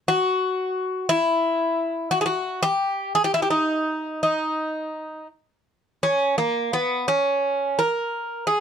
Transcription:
0.08 F#4
1.09 E4
2.11 F#4
2.21 G#4
2.26 F#4
2.63 G4
3.15 G#4
3.24 G4
3.34 E4
3.42 G4
3.50 D#4
4.23 D#4
6.03 C#4
6.38 A#3
6.73 B3
7.08 C#4
7.79 A#4
8.47 G#4

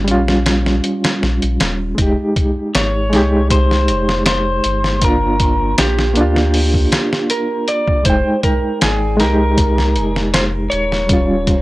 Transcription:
Already playing: G1 G3 C#4 F4
0.05 A#1 G3 C#4, closed hi-hat
0.11 F4
0.28 snare
0.46 snare, closed hi-hat
0.66 snare
0.84 closed hi-hat
1.04 snare, closed hi-hat
1.23 A#1, snare
1.42 A#1, closed hi-hat
1.60 D#1, snare, closed hi-hat
1.95 F1 G#3 D#4, kick, closed hi-hat
2.02 G4
2.36 kick, closed hi-hat
2.75 G#1 C#5, snare, closed hi-hat
3.09 C2 G#3 D#4, snare, closed hi-hat
3.16 G4
3.50 C5, kick, closed hi-hat
3.71 snare
3.88 F1, closed hi-hat
4.09 snare
4.26 C5, snare, closed hi-hat
4.64 G1, closed hi-hat
4.84 snare
4.99 A#3 D4, kick, closed hi-hat
5.04 F4 A#4
5.40 kick, closed hi-hat
5.78 A#1 G4, snare, closed hi-hat
5.99 snare
6.14 D2 A#3 D4, closed hi-hat
6.21 F4
6.36 snare
6.54 open hi-hat
6.74 kick
6.92 snare, closed hi-hat
7.13 snare
7.30 A#4, closed hi-hat
7.68 D5, closed hi-hat
7.88 kick
8.03 F1 G#3 D#4 C5, kick, closed hi-hat
8.10 G5
8.43 A#4, kick, closed hi-hat
8.81 G#1 G#4, snare, closed hi-hat
9.17 C2 G#3 D#4 A#4, snare, closed hi-hat
9.23 G4
9.58 kick, closed hi-hat
9.78 snare
9.96 F1, closed hi-hat
10.16 snare
10.34 C5, snare, closed hi-hat
10.70 D#1 C#5, closed hi-hat
10.92 snare
11.07 G3 C#4, kick, closed hi-hat
11.13 F4
11.47 kick, closed hi-hat

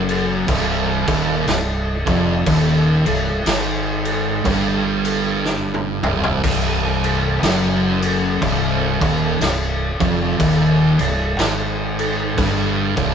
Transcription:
Already playing: F#1 F#2
0.09 crash
0.48 C1 C2, kick, crash
1.08 D#1 D#2, kick, crash
1.47 C1 C2, snare, crash
2.07 F1 F2, kick, crash
2.46 D#1 D#2, kick, crash
3.06 C1 C2, crash
3.46 G#1 G#2, snare, crash
4.05 crash
4.45 G1 G2, kick, crash
5.05 crash
5.45 snare
5.74 high tom
6.03 C1 C2, mid tom
6.24 floor tom
6.44 C1 C2, kick, crash
7.04 crash
7.43 F#1 F#2, snare, crash
8.02 crash
8.41 C1 C2, kick, crash
9.01 D#1 D#2, kick, crash
9.40 C1 C2, snare, crash
10.00 F1 F2, kick, crash
10.39 D#1 D#2, kick, crash
10.99 C1 C2, crash
11.39 G#1 G#2, snare, crash
11.99 crash
12.38 G1 G2, kick, crash
12.97 C1 C2, kick, crash

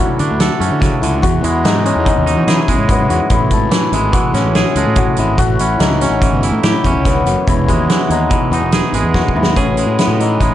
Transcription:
Already playing: D3 F#3 B3 C#4 D4 E4 F#4 A4
0.00 A2
0.19 D3 D4, closed hi-hat
0.31 D2
0.40 A4, snare, closed hi-hat
0.59 F#2 C#4 A4, closed hi-hat
0.71 D3
0.80 C#3 F#4, kick, snare, closed hi-hat
1.02 C#2 D3 E4, closed hi-hat
1.22 E2 F#4, kick, closed hi-hat
1.44 E2 G#3 E4, closed hi-hat
1.64 G#2 E3 D#4, snare, closed hi-hat
1.85 G#3 C#4, closed hi-hat
1.96 E2
2.05 B2 D#4, kick, closed hi-hat
2.17 D#2
2.26 D#4, closed hi-hat
2.37 E3
2.47 E3 E4 G#4, snare, closed hi-hat
2.68 B1 G#3 C#4, kick, closed hi-hat
2.78 G#2
2.88 F#2 B3, kick, closed hi-hat
3.09 E2 G#2 F#4, closed hi-hat
3.30 A1 A2 E4, kick, closed hi-hat
3.50 G#1 A4, kick, closed hi-hat
3.71 E3, snare, closed hi-hat
3.92 G#1 G#3 E4, closed hi-hat
4.12 E3 F#4, kick, closed hi-hat
4.33 A2 C#4, snare, closed hi-hat
4.44 A1
4.55 G#4, snare, closed hi-hat
4.75 C#2 G#3 A4, closed hi-hat
4.87 A2
4.96 A2 F#4, kick, closed hi-hat
5.17 G#1 G#3 E4, closed hi-hat
5.38 A1 A2 F#4, kick, closed hi-hat
5.59 A1 C#4 E4, closed hi-hat
5.79 C#2 E3 D#4, snare, closed hi-hat
6.01 C#4, snare, closed hi-hat
6.10 A1
6.22 E3, kick, closed hi-hat
6.31 G1
6.43 E4, closed hi-hat
6.52 A2
6.63 A2 E4 G4, snare, closed hi-hat
6.84 E2 C#4, kick, closed hi-hat
6.93 C#2
7.04 G2 B3, kick, snare, closed hi-hat
7.25 F#1 F#2 F#4, closed hi-hat
7.47 E1 E2 E4, kick, closed hi-hat
7.68 D#2 G#3 G#4, kick, closed hi-hat
7.89 E3, snare, closed hi-hat
8.10 D#2 G#3 D#4, closed hi-hat
8.30 B2 E4, kick, closed hi-hat
8.51 E2 B3 D#4, closed hi-hat
8.62 E1
8.72 G#4, snare, closed hi-hat
8.93 G#1 G#3 G#4, closed hi-hat
9.03 E2
9.14 F#2 F#4, kick, snare
9.28 kick
9.35 D#2 G#2 E4
9.43 snare
9.56 A1 A2 C#4 G#4, kick, closed hi-hat
9.77 G#3, closed hi-hat
9.86 A2
9.99 B3 E4, snare, closed hi-hat
10.07 A2
10.20 E3 D#4, closed hi-hat
10.40 A1 G#3 E4, kick, closed hi-hat

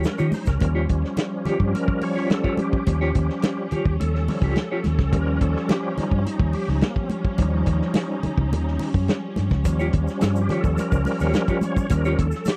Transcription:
Already playing: F3 G3 C#4
0.04 C#4 A#4, muted clean electric guitar stroke, snare, high conga, shaker
0.18 D#3 F4 G4 C#5 D#5, closed hi-hat, shaker
0.32 D#4 C5, muted clean electric guitar stroke, snare, open hi-hat, high conga, shaker
0.45 C#2 C#4 A#4, muted clean electric guitar stroke, kick, snare, closed hi-hat, high conga, shaker
0.60 D#2 F3 G3 C#4, muted clean electric guitar stroke, kick, closed hi-hat, muted conga
0.75 F4 G4 C#5
0.88 D#2, muted clean electric guitar stroke, kick, closed hi-hat
1.02 muted clean electric guitar stroke, snare
1.17 muted clean electric guitar stroke, snare, closed hi-hat, high conga
1.45 F4 G4 C#5, muted fingered electric bass stroke, snare, closed hi-hat, low conga
1.60 G2, kick
1.74 A#4, muted clean electric guitar stroke, closed hi-hat, muted conga
1.88 muted clean electric guitar stroke, kick
2.01 C#5, open hi-hat, muted conga
2.16 F4 G4 C#5, snare
2.30 A4, muted clean electric guitar stroke, snare, closed hi-hat, high conga
2.44 F4 G4 C#5, kick
2.57 G4, muted clean electric guitar stroke, closed hi-hat, high conga
2.72 muted clean electric guitar stroke, kick
2.87 D#2 F3 G3 C#4, muted clean electric guitar stroke, kick, closed hi-hat, muted conga
3.01 F4 G4 C#5
3.15 D#2, muted clean electric guitar stroke, kick, closed hi-hat, muted conga
3.30 muted clean electric guitar stroke, snare
3.42 muted clean electric guitar stroke, snare, closed hi-hat, high conga
3.71 F4 G4 C#5, muted fingered electric bass stroke, closed hi-hat, low conga
3.85 D#2, muted clean electric guitar stroke, kick
4.00 D#2 A4, muted clean electric guitar stroke, closed hi-hat, muted conga
4.15 muted clean electric guitar stroke, snare
4.28 F3 G3 C#4, snare, open hi-hat, muted conga, low conga
4.42 C#2 F4 G4 C#5, kick
4.56 muted clean electric guitar stroke, snare, closed hi-hat, high conga
4.71 F4 G4 C#5
4.84 D#2, muted clean electric guitar stroke, snare, closed hi-hat, high conga
4.99 C#2, muted clean electric guitar stroke, kick, snare
5.12 D#2 F3 G3 C#4 A#4, kick, closed hi-hat, muted conga
5.41 D#2 A4, kick, closed hi-hat, muted conga
5.57 snare
5.69 G4, snare, closed hi-hat, high conga
5.96 F3 G3 C#4 D#4, muted fingered electric bass stroke, snare, closed hi-hat, low conga
6.11 G2 C#4, kick
6.25 D#4, closed hi-hat, muted conga
6.39 D#2, kick
6.53 G4, open hi-hat, muted conga
6.68 C#2 D#4, snare
6.81 A#3, snare, closed hi-hat, high conga
6.96 kick
7.04 C4
7.10 C#4, closed hi-hat, high conga
7.25 kick
7.38 D#2 F3 G3 C#4 D#4, kick, closed hi-hat, muted conga
7.54 D#4
7.66 D#2, kick, closed hi-hat, muted conga
7.82 snare
7.94 snare, closed hi-hat, high conga
8.23 muted fingered electric bass stroke, closed hi-hat, low conga
8.38 C#2, kick
8.53 D#2, closed hi-hat, muted conga, low conga
8.68 snare
8.79 snare, open hi-hat, muted conga, low conga
8.94 F#2, kick
9.08 snare, closed hi-hat, high conga
9.36 G2, snare, closed hi-hat, high conga
9.50 C#2, kick, snare, high conga
9.64 D#2 F3 G3 C#4, muted clean electric guitar stroke, kick, closed hi-hat, muted conga, shaker
9.79 F4 G4 C#5, shaker
9.93 D#2, kick, closed hi-hat, muted conga
10.06 muted clean electric guitar stroke, snare, shaker
10.21 G2 A4, muted clean electric guitar stroke, snare, closed hi-hat, high conga, shaker
10.36 shaker
10.41 G4
10.49 F4 G4 C#5, snare, closed hi-hat, low conga
10.60 A4, kick, shaker
10.64 D#2
10.78 A#4, muted clean electric guitar stroke, closed hi-hat, muted conga, shaker
10.92 C#2, muted clean electric guitar stroke, kick, shaker
11.05 open hi-hat, muted conga, shaker
11.20 D#2 F4 G4 C#5, snare, shaker
11.34 muted clean electric guitar stroke, snare, closed hi-hat, high conga, shaker
11.48 F4 G4 C#5, kick, shaker
11.61 C#5, closed hi-hat, high conga, shaker
11.76 muted clean electric guitar stroke, kick, shaker
11.90 D#2 F3 G3 C#4 A#4, muted clean electric guitar stroke, kick, closed hi-hat, muted conga, shaker
12.05 F4 G4 C#5, shaker
12.18 D#2 A4, muted clean electric guitar stroke, kick, closed hi-hat
12.32 muted clean electric guitar stroke, snare, shaker
12.45 G4, muted clean electric guitar stroke, snare, closed hi-hat, high conga, shaker

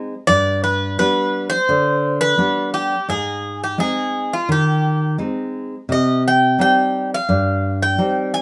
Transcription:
Already playing: G#3 C4 D#4
0.27 G2 D5
0.64 B4
0.98 G3 B3 D4 B4
1.50 C5
1.69 D3
2.21 B4
2.38 G3 B3 D4
2.74 G4
3.09 G#2 G#4
3.64 G4
3.78 G#3 C4 D#4 G#4
4.33 F4
4.49 D#3 G4
5.18 G#3 C4 D#4
5.89 C3 D#5
6.28 G5
6.58 G3 C4 D#4 G5
7.14 F5
7.29 G2
7.83 G5
7.98 G3 C4 D#4
8.34 G#5

